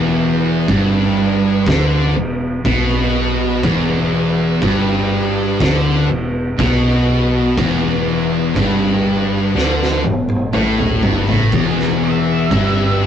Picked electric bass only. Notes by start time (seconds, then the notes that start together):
Already playing: E1
0.68 G1
1.67 D2
2.15 E1
2.65 B1
3.64 E1
4.62 G1
5.61 D2
6.10 E1
6.59 B1
7.58 E1
8.56 G1
9.55 D2
10.04 E1
10.54 A1
11.04 G1
11.28 A1
11.52 E1
12.51 G1